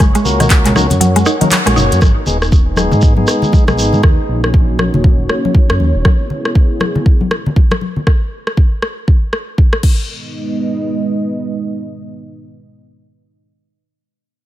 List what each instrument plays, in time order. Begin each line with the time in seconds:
Already playing: analog synth pad C#6
0.00 analog synth bass F#1, analog synth pad A#4 C#5 F#5, kick, cross-stick, closed hi-hat, muted conga, high conga, shekere
0.15 synth arpeggio sound G#3, closed hi-hat, shekere
0.25 analog synth bass C#2, tonewheel organ A#3 C#4 F#4 A#4, low conga, shekere
0.40 synth arpeggio sound D#3, cross-stick, closed hi-hat, mid tom, shekere
0.50 kick, clap, closed hi-hat, muted conga, shekere
0.66 synth arpeggio sound G#3, clap, closed hi-hat, mid tom, shekere
0.75 tonewheel organ A#3 C#4 F#4 A#4, synth arpeggio sound D#4, cross-stick, high conga, shekere
0.90 analog synth bass F#2, closed hi-hat, muted conga, low conga, shekere
1.01 synth arpeggio sound F#3, closed hi-hat, high conga, shekere
1.16 synth arpeggio sound G#3, closed hi-hat, shekere
1.26 synth arpeggio sound D#4, cross-stick, muted conga, shekere
1.41 synth arpeggio sound D#3, tonewheel organ A#3 C#4 F#4 A#4, closed hi-hat, high conga, shekere
1.51 clap, closed hi-hat, high conga, shekere
1.66 analog synth bass A#1, synth arpeggio sound G#3, tonewheel organ A#3 C#4 F#4 C#5, cross-stick, closed hi-hat, muted conga, shekere
1.76 analog synth bass F#1, synth arpeggio sound D#4, mid tom, high conga, shekere
1.92 analog synth bass F#2, closed hi-hat, shekere
2.01 analog synth bass G#1, analog synth pad G#3 B3 D#4 B4 D#5, kick, cross-stick, muted conga, high conga, shekere
2.26 analog synth bass D#1, tonewheel organ G#3 B3 D#4 G#4, low conga, shekere
2.42 cross-stick, shekere
2.52 kick, muted conga, shekere
2.77 tonewheel organ G#3 B3 D#4 G#4, cross-stick, high conga, shekere
2.92 analog synth bass G#2, muted conga, low conga, shekere
3.01 kick, shekere
3.17 tonewheel organ G#3 B3 D#4 G#4, high conga
3.27 cross-stick, muted conga, shekere
3.42 low conga, shekere
3.52 kick, high conga, shekere
3.67 analog synth bass B1, tonewheel organ G#3 B3 D#4 G#4, cross-stick, muted conga, high conga, shekere
3.77 analog synth bass G#1, high conga, shekere
3.93 analog synth bass G#2, low conga, shekere
4.03 analog synth bass D#2, analog synth pad A#3 C#4 F#4 C#5, kick, cross-stick, muted conga, high conga
4.29 analog synth bass A#1
4.44 cross-stick
4.54 kick, muted conga
4.79 cross-stick, high conga
4.94 analog synth bass D#1, muted conga, low conga
5.04 kick, high conga
5.29 cross-stick, muted conga
5.45 high conga
5.55 kick, high conga
5.70 analog synth bass F#2, cross-stick, muted conga
5.80 analog synth bass D#2, high conga
5.95 analog synth bass D#1
6.05 analog synth pad B3 E4 G#4, kick, cross-stick, muted conga, high conga
6.30 low conga
6.45 cross-stick
6.55 kick, muted conga
6.80 cross-stick, high conga
6.95 muted conga, low conga
7.06 kick
7.21 high conga
7.31 cross-stick, muted conga
7.46 low conga
7.56 kick, high conga
7.71 cross-stick, muted conga, high conga
7.81 high conga
7.96 low conga
8.07 kick, cross-stick
8.47 cross-stick
8.57 kick
8.82 cross-stick
9.08 kick
9.33 cross-stick
9.58 kick
9.73 cross-stick
9.83 analog synth pad G#3 B3 D#4 B4 D#5, kick, crash